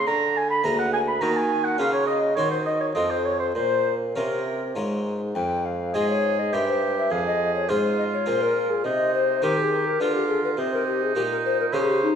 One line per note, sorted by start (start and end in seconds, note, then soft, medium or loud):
0.07 0.60 D3 medium
0.07 0.63 D3 loud
0.07 0.38 A#5 loud
0.37 0.50 G#5 loud
0.37 0.49 G#5 medium
0.50 0.64 B5 medium
0.50 0.66 B5 loud
0.64 1.17 D2 medium
0.64 1.20 D2 medium
0.64 1.05 A#3 medium
0.64 1.05 G#4 medium
0.64 1.06 A#4 medium
0.64 0.81 A#5 loud
0.64 0.78 A#5 medium
0.79 0.93 F#5 loud
0.79 0.92 F#5 loud
0.93 1.09 G#5 loud
0.93 1.00 G#5 loud
1.07 1.23 B5 medium
1.07 1.22 B5 loud
1.21 1.75 D#3 medium
1.21 1.78 D#3 loud
1.21 1.75 A#3 medium
1.21 1.75 F#4 medium
1.21 1.75 A#4 medium
1.21 1.34 A#5 loud
1.21 1.38 A#5 medium
1.35 1.64 G#5 loud
1.35 1.66 G#5 loud
1.65 1.81 F#5 loud
1.65 1.80 F#5 loud
1.78 2.32 C#3 medium
1.78 2.38 C#3 medium
1.78 2.32 C#4 medium
1.78 2.33 F4 medium
1.78 2.33 A#4 medium
1.78 1.93 F5 loud
1.78 1.92 F5 loud
1.92 2.06 C#5 medium
1.92 2.07 C#5 loud
2.07 2.20 D#5 medium
2.07 2.36 D#5 loud
2.36 2.95 D#3 medium
2.36 2.92 D#3 medium
2.36 2.92 C4 medium
2.36 2.92 F#4 medium
2.36 2.92 C5 medium
2.36 2.50 C#5 loud
2.36 2.51 C#5 medium
2.51 2.65 C5 medium
2.51 2.58 C5 loud
2.66 2.80 D#5 medium
2.66 2.83 D#5 loud
2.81 2.87 C#5 medium
2.81 2.97 C#5 loud
2.95 3.51 F2 medium
2.95 3.54 F2 medium
2.95 3.51 C4 medium
2.95 3.51 F4 soft
2.95 3.52 A4 soft
2.95 3.12 D#5 loud
3.10 3.24 C5 medium
3.10 3.27 C5 loud
3.25 3.39 C#5 medium
3.25 3.40 C#5 loud
3.39 3.46 C5 medium
3.39 3.55 C5 medium
3.55 4.14 A#2 medium
3.55 4.12 A#2 medium
3.55 3.94 C5 medium
3.55 3.94 C5 loud
4.16 4.72 C3 medium
4.16 4.77 C3 medium
4.16 4.59 C#4 medium
4.16 4.59 F4 medium
4.16 4.72 A#4 medium
4.16 4.59 A#4 medium
4.16 4.72 A#4 medium
4.75 5.31 G#2 medium
4.75 5.35 G#2 medium
4.75 5.19 C#4 soft
4.75 5.19 F4 soft
4.75 5.19 A#4 soft
5.35 5.90 F2 medium
5.35 5.67 G5 loud
5.65 5.96 F5 medium
5.94 6.48 G#2 medium
5.94 6.55 G#2 medium
5.94 6.36 C4 medium
5.94 6.36 F4 medium
5.94 6.54 G#4 medium
5.94 6.37 G#4 medium
5.94 6.09 D#5 loud
6.09 6.41 C#5 loud
6.39 6.55 D#5 loud
6.53 7.07 G2 medium
6.53 7.12 G2 loud
6.53 7.07 C4 medium
6.53 7.07 E4 medium
6.53 7.10 G4 medium
6.53 7.07 A#4 medium
6.53 6.67 E5 loud
6.68 6.96 C5 loud
6.97 7.13 E5 loud
7.11 7.65 F2 medium
7.11 7.70 F2 medium
7.11 7.71 G#4 medium
7.11 7.26 F5 loud
7.27 7.54 D#5 loud
7.55 7.69 C#5 loud
7.69 8.23 G#2 medium
7.69 8.10 G#2 medium
7.69 8.11 C4 medium
7.69 8.11 F4 medium
7.69 8.85 F4 medium
7.69 8.11 G#4 medium
7.69 7.98 C5 loud
7.98 8.04 D#5 loud
8.13 8.29 C#5 medium
8.26 8.80 A#2 medium
8.26 8.87 A#2 medium
8.26 8.68 C4 medium
8.26 8.68 F4 medium
8.26 8.68 G#4 medium
8.26 8.43 C5 loud
8.41 8.72 A#4 loud
8.70 8.86 G#4 loud
8.84 9.38 C3 medium
8.84 9.44 C3 medium
8.84 9.41 D#4 medium
8.84 9.13 D#5 loud
9.14 9.45 C5 loud
9.42 9.96 D#3 medium
9.42 9.99 D#3 medium
9.42 9.84 C4 medium
9.42 9.84 D#4 medium
9.42 9.84 G4 medium
9.42 9.99 G4 medium
9.42 9.59 A#4 loud
9.57 9.63 A4 loud
9.62 9.87 G#4 loud
9.86 10.01 A#4 loud
10.00 10.53 D3 medium
10.00 10.56 D3 medium
10.00 10.54 F4 soft
10.00 10.57 F4 medium
10.00 10.54 G4 medium
10.00 10.14 B4 loud
10.15 10.27 G4 loud
10.28 10.42 G#4 loud
10.44 10.50 B4 medium
10.57 11.11 C3 medium
10.57 11.14 C3 medium
10.57 11.75 D#4 loud
10.57 10.72 C5 loud
10.74 10.86 A#4 loud
10.87 11.04 G4 loud
11.03 11.16 G#4 loud
11.15 11.69 A#2 medium
11.15 11.72 A#2 medium
11.15 11.57 D#4 medium
11.15 11.57 G4 medium
11.15 11.22 G4 loud
11.31 11.37 A#4 loud
11.45 11.59 C5 loud
11.60 11.66 A#4 loud
11.73 12.06 C#3 medium
11.73 12.10 C#3 loud
11.73 12.14 D#4 medium
11.73 12.15 G4 medium
11.73 11.90 G#4 loud
11.73 12.13 C5 loud
11.89 12.02 G4 loud
12.03 12.15 D#4 loud